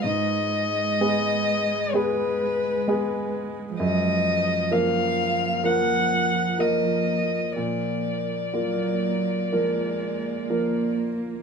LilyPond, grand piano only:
\new Staff \with { instrumentName = "Grand piano" } { \time 4/4 \key ees \minor \tempo 4 = 63 aes,4 <aes ces' aes'>4 <aes ces' aes'>4 <aes ces' aes'>4 | ges,4 <f bes bes'>4 <f bes bes'>4 <f bes bes'>4 | bes,4 <bes f' bes'>4 <f bes bes'>4 <f bes bes'>4 | }